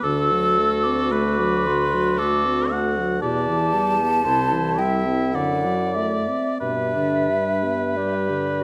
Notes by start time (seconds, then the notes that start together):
0.03 D2 D3 F#4 A4 E6
0.32 F#3
0.59 A3
0.84 C4 D6
1.12 A3 B4
1.39 F#3
1.66 D3 C6
1.94 F#3
2.18 A3 A4 D6
2.46 C4
2.71 A3 F#5
2.99 F#3
3.20 E2 B2 G4 D5 A5
3.49 E3
3.74 G3
4.00 B3
4.24 C2 C3 E4 C5
4.53 E3
4.79 G3 E5 G5
5.06 C4
5.34 F#2 D3 D5 F#5
5.65 F#3
5.95 A3 E5
6.28 C4
6.59 G2 B2 D4 B4 E5
6.96 D3
7.29 G3
7.64 B3
7.96 G3 G4 D5
8.30 D3
8.60 F#4